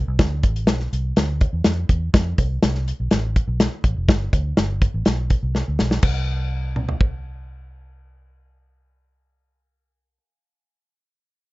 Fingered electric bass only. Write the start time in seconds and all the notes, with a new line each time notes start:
0.08 C2
0.19 D2
0.44 A1
0.68 B1
0.93 C2
1.17 D2
1.53 E2
1.66 F2
1.89 E2
2.14 F2
2.38 C2
2.63 C2
3.00 B1
3.12 A1
3.48 B1
3.84 A1
3.96 F1
4.09 G1
4.33 D2
4.58 G1
4.94 A1
5.07 B1
5.43 C2
5.68 D2
5.81 B1
6.03 C2